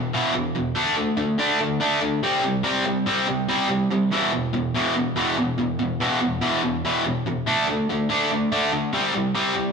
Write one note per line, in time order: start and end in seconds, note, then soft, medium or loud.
0.00 0.12 E2 medium
0.00 0.12 B2 medium
0.13 0.33 E2 medium
0.13 0.33 B2 loud
0.13 0.34 E3 loud
0.34 0.53 E2 medium
0.34 0.53 B2 medium
0.55 0.74 E2 medium
0.55 0.74 B2 medium
0.75 0.95 D3 medium
0.75 0.96 A3 medium
0.75 0.96 D4 medium
0.97 1.16 D3 medium
0.97 1.16 A3 medium
1.17 1.37 D3 medium
1.17 1.37 A3 medium
1.38 1.58 D3 medium
1.38 1.59 A3 medium
1.38 1.59 D4 medium
1.60 1.79 D3 medium
1.60 1.79 A3 medium
1.80 2.00 D3 medium
1.80 2.00 A3 medium
1.80 2.01 D4 loud
2.01 2.20 D3 medium
2.01 2.21 A3 medium
2.23 2.42 C3 medium
2.23 2.43 G3 medium
2.23 2.43 C4 medium
2.43 2.62 C3 medium
2.43 2.63 G3 medium
2.63 2.84 C3 medium
2.63 2.84 G3 medium
2.63 2.84 C4 medium
2.86 3.05 C3 medium
2.86 3.05 G3 medium
3.06 3.26 C3 medium
3.06 3.26 G3 medium
3.06 3.27 C4 loud
3.27 3.46 C3 medium
3.27 3.47 G3 medium
3.48 3.67 C3 medium
3.48 3.68 G3 medium
3.48 3.69 C4 loud
3.69 3.88 C3 medium
3.69 3.88 G3 medium
3.91 4.10 C3 medium
3.91 4.10 G3 medium
4.12 4.31 E2 medium
4.12 4.32 B2 medium
4.12 4.32 E3 loud
4.32 4.51 E2 medium
4.32 4.51 B2 medium
4.53 4.72 E2 medium
4.53 4.72 B2 medium
4.74 4.94 E2 medium
4.74 4.94 B2 medium
4.74 4.95 E3 medium
4.96 5.14 E2 medium
4.96 5.14 B2 medium
5.16 5.36 E2 loud
5.16 5.36 B2 loud
5.16 5.36 E3 loud
5.38 5.57 E2 medium
5.38 5.57 B2 medium
5.58 5.77 E2 medium
5.58 5.77 B2 medium
5.79 5.98 E2 medium
5.79 5.98 B2 medium
6.00 6.20 E2 medium
6.00 6.20 B2 medium
6.00 6.20 E3 medium
6.21 6.40 E2 medium
6.21 6.40 B2 medium
6.42 6.61 E2 medium
6.42 6.61 B2 medium
6.42 6.62 E3 loud
6.63 6.82 E2 medium
6.63 6.82 B2 medium
6.85 7.04 E2 medium
6.85 7.04 B2 medium
6.85 7.04 E3 loud
7.05 7.23 E2 medium
7.05 7.24 B2 medium
7.26 7.44 E2 medium
7.26 7.45 B2 medium
7.47 7.66 D3 medium
7.47 7.66 A3 medium
7.47 7.66 D4 medium
7.68 7.86 D3 medium
7.68 7.87 A3 medium
7.89 8.07 D3 medium
7.89 8.08 A3 medium
8.09 8.29 D3 loud
8.09 8.29 A3 medium
8.09 8.29 D4 medium
8.31 8.49 D3 medium
8.31 8.50 A3 medium
8.52 8.71 D3 loud
8.52 8.71 A3 loud
8.52 8.71 D4 loud
8.73 8.91 D3 medium
8.73 8.91 A3 medium
8.93 9.12 C3 medium
8.93 9.13 G3 medium
8.93 9.13 C4 medium
9.14 9.32 C3 medium
9.14 9.33 G3 medium
9.35 9.54 C3 medium
9.35 9.54 G3 medium
9.35 9.54 C4 medium
9.55 9.72 C3 medium
9.55 9.72 G3 medium